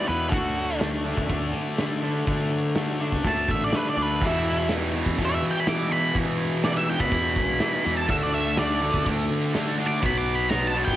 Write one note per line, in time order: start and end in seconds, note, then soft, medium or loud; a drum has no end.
0.00 0.32 E3 medium
0.00 0.33 B3 medium
0.08 0.31 E2 medium
0.08 0.30 B2 medium
0.08 0.31 E3 medium
0.08 0.32 E4 medium
0.08 0.32 B4 medium
0.29 1.13 D2 medium
0.29 0.79 D3 loud
0.29 0.80 A3 medium
0.29 0.80 D4 loud
0.29 0.78 F#4 loud
0.29 kick loud
0.29 open hi-hat medium
0.57 1.79 F#3 medium
0.80 1.05 D3 medium
0.80 1.05 A3 medium
0.80 1.06 D4 loud
0.80 snare loud
0.80 open hi-hat soft
1.05 1.28 D3 medium
1.05 1.29 A3 medium
1.05 1.29 D4 medium
1.18 1.29 D2 medium
1.18 kick medium
1.29 1.53 D2 medium
1.29 1.78 D3 loud
1.29 1.79 A3 loud
1.29 1.79 D4 loud
1.29 kick loud
1.29 open hi-hat medium
1.53 2.26 D3 medium
1.53 2.23 D3 medium
1.78 2.01 D3 medium
1.78 2.02 A3 medium
1.78 2.03 D4 medium
1.78 snare loud
1.78 open hi-hat soft
2.02 2.25 D3 medium
2.02 2.25 A3 medium
2.02 2.26 D4 medium
2.26 2.75 D3 medium
2.26 3.08 D3 medium
2.26 2.75 A3 loud
2.26 2.76 D4 loud
2.26 kick loud
2.26 open hi-hat medium
2.51 3.73 F#3 medium
2.76 2.99 D3 medium
2.76 3.00 A3 medium
2.76 3.00 D4 loud
2.76 snare loud
2.76 open hi-hat medium
3.00 3.23 D3 medium
3.00 3.23 A3 medium
3.00 3.24 D4 medium
3.12 3.24 C#2 medium
3.12 kick medium
3.24 3.47 D2 loud
3.24 3.72 D3 loud
3.24 3.73 A3 loud
3.24 3.73 D4 loud
3.24 3.49 A5 loud
3.24 kick medium
3.24 open hi-hat medium
3.49 3.71 A1 medium
3.49 4.22 D3 medium
3.49 3.62 E5 medium
3.49 kick medium
3.64 3.74 D5 medium
3.73 3.96 D3 medium
3.73 3.96 A3 medium
3.73 3.97 D4 medium
3.73 3.87 B4 medium
3.73 snare loud
3.73 open hi-hat medium
3.90 4.02 D5 medium
3.97 4.19 D2 medium
3.97 4.20 D3 medium
3.97 4.20 A3 medium
3.97 4.20 D4 medium
4.02 4.23 B4 medium
4.21 4.69 E2 medium
4.21 5.02 E2 medium
4.21 4.69 B2 medium
4.21 4.70 E3 medium
4.21 kick loud
4.21 open hi-hat medium
4.27 4.71 E4 loud
4.69 4.93 E2 medium
4.69 4.93 B2 medium
4.69 4.94 E3 medium
4.69 snare loud
4.69 open hi-hat medium
4.94 5.17 E2 medium
4.94 5.17 B2 medium
4.94 5.18 E3 medium
5.06 5.18 E2 medium
5.06 kick medium
5.18 5.66 E2 medium
5.18 5.41 E2 medium
5.18 5.66 B2 loud
5.18 5.67 E3 loud
5.18 kick medium
5.18 open hi-hat medium
5.25 5.33 D5 loud
5.34 5.44 E5 medium
5.42 6.11 E3 medium
5.51 5.59 G5 medium
5.60 5.68 B5 loud
5.67 5.88 E2 medium
5.67 5.89 B2 medium
5.67 5.90 E3 medium
5.67 5.91 D6 loud
5.67 snare loud
5.67 open hi-hat medium
5.89 6.14 E2 medium
5.89 6.14 B2 medium
5.89 6.15 E3 medium
5.89 6.15 B5 medium
6.15 6.63 E2 medium
6.15 6.64 B2 medium
6.15 6.96 E3 medium
6.15 6.64 E3 medium
6.15 kick loud
6.15 open hi-hat medium
6.64 6.86 E2 medium
6.64 6.87 B2 medium
6.64 6.88 E3 loud
6.64 6.76 D5 loud
6.64 snare loud
6.64 open hi-hat medium
6.77 6.88 E5 medium
6.87 7.11 E2 medium
6.87 7.12 B2 medium
6.87 7.12 E3 medium
6.87 7.00 G5 medium
7.00 7.12 C#2 medium
7.00 7.94 B5 loud
7.00 kick medium
7.12 7.59 E2 medium
7.12 7.35 E2 loud
7.12 7.60 B2 loud
7.12 7.60 E3 loud
7.12 kick loud
7.12 open hi-hat medium
7.36 7.59 B1 medium
7.36 kick medium
7.60 7.83 E2 medium
7.60 7.83 B2 medium
7.60 7.84 E3 medium
7.60 snare loud
7.60 open hi-hat medium
7.84 8.07 E2 medium
7.84 8.08 E2 loud
7.84 8.07 B2 medium
7.84 8.07 E3 medium
7.97 8.09 A5 medium
8.08 8.90 D2 loud
8.08 8.57 D3 medium
8.08 8.57 A3 medium
8.08 8.58 D4 loud
8.08 8.21 E5 medium
8.08 kick loud
8.08 open hi-hat medium
8.23 8.34 D5 medium
8.34 8.57 E5 loud
8.57 8.80 D3 loud
8.57 8.81 A3 medium
8.57 8.82 D4 loud
8.57 9.05 D5 medium
8.57 snare loud
8.57 open hi-hat medium
8.81 9.05 D3 medium
8.81 9.05 A3 loud
8.81 9.05 D4 medium
8.94 9.05 D2 medium
8.94 kick medium
9.06 9.28 D2 loud
9.06 9.53 D3 loud
9.06 9.54 A3 loud
9.06 9.54 D4 loud
9.06 kick loud
9.06 open hi-hat medium
9.30 9.98 D3 medium
9.54 9.76 D3 medium
9.54 9.76 A3 medium
9.54 9.77 D4 loud
9.54 snare loud
9.54 open hi-hat medium
9.77 10.00 D3 medium
9.77 10.00 A3 medium
9.77 10.01 D4 loud
9.87 10.02 D6 loud
10.01 10.83 B1 medium
10.01 10.49 B2 medium
10.01 10.50 F#3 loud
10.01 10.50 B3 loud
10.01 kick loud
10.01 open hi-hat medium
10.06 10.18 B5 loud
10.18 10.35 D6 loud
10.35 10.50 B5 loud
10.50 10.74 B2 medium
10.50 10.74 F#3 loud
10.50 10.75 B3 loud
10.50 10.66 A#5 medium
10.50 snare loud
10.50 open hi-hat medium
10.67 10.82 A5 medium
10.75 10.96 B2 medium
10.75 10.96 F#3 medium
10.75 10.96 B3 loud
10.85 10.96 G#1 medium
10.85 10.96 G5 medium
10.85 kick medium